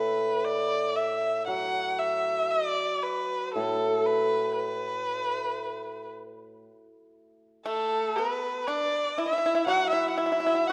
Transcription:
0.00 2.53 A2 soft
0.00 0.47 B4 medium
0.45 0.97 D5 medium
0.96 1.47 E5 medium
1.48 4.59 F#3 soft
1.48 2.00 F#5 medium
1.99 2.53 E5 medium
2.51 3.05 D5 medium
3.03 3.54 B4 medium
3.54 6.63 A2 medium
3.54 4.08 A4 medium
4.06 4.56 B4 medium
4.57 6.08 B4 medium
7.66 8.13 A3 medium
7.66 8.17 A4 medium
8.16 8.64 B3 medium
8.16 8.69 B4 medium
8.67 9.14 D4 medium
8.67 9.20 D5 medium
9.18 9.24 E4 medium
9.18 9.67 E5 medium
9.26 9.32 E4 medium
9.33 9.37 E4 medium
9.38 9.45 E4 medium
9.46 9.53 E4 medium
9.55 9.61 E4 medium
9.66 10.73 F#3 medium
9.66 9.92 F#4 medium
9.66 9.90 F#5 medium
9.90 10.16 E4 medium
9.90 10.09 E5 medium
10.10 10.19 F#5 medium
10.17 10.25 E4 medium
10.17 10.69 E5 medium
10.26 10.31 E4 soft
10.32 10.39 E4 medium
10.40 10.45 E4 medium
10.46 10.54 E4 medium
10.55 10.62 E4 soft
10.68 10.73 F#5 medium

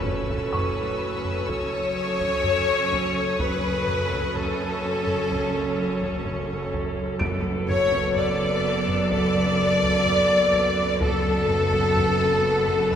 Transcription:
0.00 3.36 F#1 medium
0.00 0.98 F#2 loud
0.00 3.36 F#2 medium
0.00 3.36 C#4 medium
0.00 3.35 F#4 medium
0.00 3.35 A4 medium
0.00 3.36 A4 medium
0.00 1.45 B4 medium
0.00 1.46 B4 medium
0.00 1.51 B4 medium
0.00 3.35 C#5 medium
0.00 6.69 C#6 medium
0.00 3.48 E6 medium
0.00 impact medium
0.06 taiko low medium
0.30 taiko medium
0.53 3.35 C#6 soft
0.53 3.48 D#6 medium
0.53 taiko low medium
1.25 taiko low medium
1.48 3.39 C#5 medium
1.48 3.40 C#5 loud
1.48 taiko medium
2.20 taiko medium
2.44 taiko low medium
2.92 taiko medium
3.39 7.17 F#1 medium
3.39 7.17 F#2 medium
3.39 7.17 C#4 medium
3.39 7.17 F#4 medium
3.39 7.17 A4 medium
3.39 4.33 B4 medium
3.39 4.38 B4 loud
3.39 4.35 B4 loud
3.39 7.17 C#5 medium
3.39 taiko medium
3.48 4.78 D#6 medium
3.87 taiko low medium
4.11 taiko medium
4.34 6.25 A4 medium
4.34 6.26 A4 medium
4.34 6.23 A4 medium
4.34 taiko low medium
5.07 taiko low medium
5.30 taiko medium
6.02 taiko medium
6.25 taiko low medium
6.73 taiko medium
7.19 10.98 F#1 medium
7.19 8.60 F#2 loud
7.19 10.98 F#2 medium
7.19 10.98 B3 medium
7.19 10.98 F#4 medium
7.19 10.98 A4 medium
7.19 11.01 B4 medium
7.19 10.02 D7 medium
7.19 taiko loud
7.68 8.13 C#5 loud
7.68 8.19 C#5 loud
7.68 8.14 C#5 loud
7.68 taiko low medium
7.92 taiko medium
8.16 9.09 D5 medium
8.16 9.11 D5 loud
8.16 9.10 D5 medium
8.16 taiko low medium
8.88 taiko low medium
9.11 10.98 D5 loud
9.11 11.03 D5 loud
9.11 taiko medium
9.83 taiko medium
10.06 taiko low medium
10.53 taiko medium
11.01 12.95 F#1 loud
11.01 12.95 F#2 medium
11.01 12.95 B3 medium
11.01 12.95 F#4 medium
11.01 12.92 A4 loud
11.01 12.89 A4 loud
11.01 12.95 A4 medium
11.01 12.89 A4 loud
11.01 12.95 A4 medium
11.01 12.95 B4 medium
11.01 taiko loud
11.48 taiko low medium
11.72 taiko medium
11.97 taiko low medium
12.68 taiko low medium
12.91 12.95 B4 loud
12.91 taiko medium

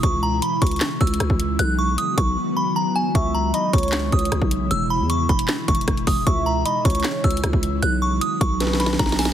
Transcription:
0.00 0.41 C#2 loud
0.00 1.58 C#3 medium
0.00 1.56 E3 medium
0.00 1.55 G#3 medium
0.00 1.55 E4 medium
0.00 0.20 C#6 medium
0.00 kick loud
0.00 closed hi-hat medium
0.23 0.39 A#5 medium
0.42 0.59 B5 medium
0.42 closed hi-hat medium
0.62 0.80 C#2 loud
0.62 0.98 C#6 medium
0.62 kick medium
0.62 closed hi-hat medium
0.67 closed hi-hat medium
0.71 closed hi-hat medium
0.76 closed hi-hat soft
0.80 snare loud
0.80 clap loud
0.80 closed hi-hat medium
1.01 1.19 C#2 loud
1.01 1.56 E6 medium
1.01 kick loud
1.01 closed hi-hat soft
1.07 closed hi-hat medium
1.14 closed hi-hat medium
1.20 1.29 C#2 loud
1.20 cross-stick medium
1.20 closed hi-hat medium
1.30 1.58 C#2 loud
1.30 kick medium
1.40 closed hi-hat medium
1.59 1.97 B1 loud
1.59 3.13 D#3 medium
1.59 3.13 F#3 medium
1.59 3.13 B3 medium
1.59 3.13 F#4 medium
1.59 1.76 F#6 loud
1.59 closed hi-hat medium
1.79 1.95 C#6 medium
1.98 2.15 D#6 medium
1.98 closed hi-hat medium
2.18 2.36 B1 loud
2.18 2.54 C#6 medium
2.18 kick medium
2.18 closed hi-hat medium
2.57 2.73 B5 medium
2.76 2.93 A#5 medium
2.96 3.12 G#5 medium
3.15 3.52 C#2 loud
3.15 4.69 C#3 medium
3.15 7.79 E3 medium
3.15 4.69 G#3 medium
3.15 6.24 E4 medium
3.15 3.52 E5 medium
3.15 3.32 C#6 medium
3.15 kick loud
3.15 closed hi-hat medium
3.34 3.51 A#5 medium
3.54 3.72 D#5 medium
3.54 3.71 B5 medium
3.54 closed hi-hat medium
3.73 4.11 C#2 loud
3.73 4.28 C#5 medium
3.73 4.10 C#6 medium
3.73 kick medium
3.73 closed hi-hat medium
3.78 closed hi-hat medium
3.83 closed hi-hat medium
3.88 closed hi-hat soft
3.92 snare loud
3.92 clap loud
3.92 closed hi-hat medium
4.12 4.31 C#2 loud
4.12 4.67 D#6 medium
4.12 kick loud
4.12 closed hi-hat medium
4.19 closed hi-hat medium
4.25 closed hi-hat medium
4.32 4.41 C#2 loud
4.32 cross-stick medium
4.32 closed hi-hat medium
4.42 4.70 B1 loud
4.42 kick medium
4.51 closed hi-hat medium
4.71 5.02 E1 loud
4.71 6.25 B2 medium
4.71 7.79 G#3 medium
4.71 4.88 E6 medium
4.71 closed hi-hat medium
4.90 5.07 B5 medium
5.00 5.28 E2 loud
5.10 5.26 C#6 medium
5.10 closed hi-hat medium
5.29 5.48 E1 loud
5.29 5.66 B5 medium
5.29 kick medium
5.29 closed hi-hat medium
5.39 closed hi-hat medium
5.48 snare loud
5.48 clap loud
5.48 closed hi-hat medium
5.68 5.87 E1 loud
5.68 6.05 C#6 medium
5.68 kick loud
5.68 closed hi-hat medium
5.75 closed hi-hat medium
5.81 closed hi-hat soft
5.88 6.06 E1 loud
5.88 kick loud
5.88 cross-stick medium
5.88 closed hi-hat medium
5.97 closed hi-hat soft
6.07 6.26 E1 loud
6.07 6.24 D#6 medium
6.07 kick loud
6.07 open hi-hat medium
6.27 6.64 C#2 loud
6.27 7.81 C#3 medium
6.27 7.81 E4 medium
6.27 6.63 E5 medium
6.27 6.43 C#6 medium
6.27 kick loud
6.27 closed hi-hat medium
6.46 6.63 A#5 medium
6.65 6.84 D#5 medium
6.65 6.82 B5 medium
6.65 closed hi-hat medium
6.85 7.04 C#2 loud
6.85 7.40 C#5 medium
6.85 7.22 C#6 medium
6.85 kick loud
6.85 closed hi-hat medium
6.90 closed hi-hat medium
6.95 closed hi-hat medium
7.00 closed hi-hat soft
7.04 snare loud
7.04 clap loud
7.04 closed hi-hat medium
7.24 7.43 C#2 loud
7.24 7.79 E6 medium
7.24 kick loud
7.24 closed hi-hat soft
7.31 closed hi-hat medium
7.37 closed hi-hat medium
7.44 7.53 C#2 loud
7.44 cross-stick medium
7.44 closed hi-hat medium
7.53 7.81 C#2 loud
7.53 kick medium
7.63 closed hi-hat medium
7.82 8.20 B1 loud
7.82 9.33 D#3 medium
7.82 9.33 F#3 medium
7.82 9.33 B3 medium
7.82 9.33 F#4 medium
7.82 7.99 F#6 loud
7.82 closed hi-hat medium
8.02 8.19 C#6 medium
8.21 8.38 D#6 medium
8.21 closed hi-hat medium
8.41 8.97 B1 loud
8.41 8.78 C#6 medium
8.41 kick loud
8.41 closed hi-hat medium
8.60 8.97 B4 medium
8.60 snare medium
8.60 closed hi-hat medium
8.67 snare medium
8.73 snare medium
8.80 8.97 B5 medium
8.80 snare medium
8.80 closed hi-hat medium
8.86 snare medium
8.93 snare medium
8.99 9.33 B1 loud
8.99 9.16 A#5 medium
8.99 kick medium
8.99 snare medium
8.99 closed hi-hat medium
9.06 snare medium
9.06 closed hi-hat soft
9.12 snare loud
9.19 9.33 G#5 medium
9.19 snare loud
9.19 open hi-hat medium
9.25 snare loud

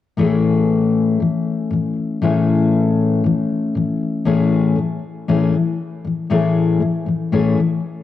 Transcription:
0.17 1.19 A2 medium
0.17 1.22 E3 medium
0.17 2.23 A3 medium
0.17 2.24 C#4 medium
0.17 1.23 G#4 medium
1.20 1.41 A2 soft
1.20 1.42 E3 soft
1.71 1.91 A2 medium
1.71 1.93 E3 medium
2.22 3.23 A2 medium
2.22 3.26 E3 medium
2.22 4.26 A3 medium
2.22 4.26 C#4 medium
2.22 3.27 G#4 medium
3.24 3.45 A2 medium
3.24 3.46 E3 medium
3.75 3.96 A2 soft
3.75 3.96 E3 medium
4.25 4.75 A2 medium
4.25 4.78 E3 medium
4.25 4.77 A3 medium
4.25 4.77 C#4 medium
4.25 4.79 G#4 medium
4.76 4.97 A2 medium
4.76 4.98 E3 medium
5.28 5.53 A2 medium
5.28 5.54 E3 medium
5.28 5.54 A3 medium
5.28 5.54 C#4 medium
5.28 5.54 G#4 medium
5.54 5.74 A2 soft
5.54 5.75 E3 medium
6.05 6.25 A2 soft
6.05 6.26 E3 soft
6.30 6.79 A2 medium
6.30 6.82 E3 medium
6.30 6.81 A3 medium
6.30 6.82 C#4 medium
6.30 6.83 G#4 medium
6.80 7.01 A2 soft
6.80 7.02 E3 medium
7.06 7.27 A2 soft
7.06 7.28 E3 soft
7.32 7.56 A2 medium
7.32 7.58 E3 medium
7.32 7.58 A3 medium
7.32 7.58 C#4 medium
7.32 7.58 G#4 medium
7.57 7.78 A2 soft
7.57 7.79 E3 medium

